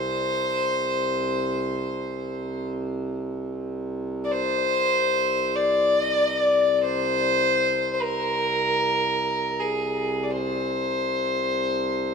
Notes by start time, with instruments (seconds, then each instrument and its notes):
Already playing: harmonium C2 C3, violin C5
4.25 violin D5
4.32 violin C5
5.56 violin D5
6.85 violin C5
7.93 violin C5
8.01 violin A#4
9.60 violin G#4
10.23 violin D5
10.31 violin C5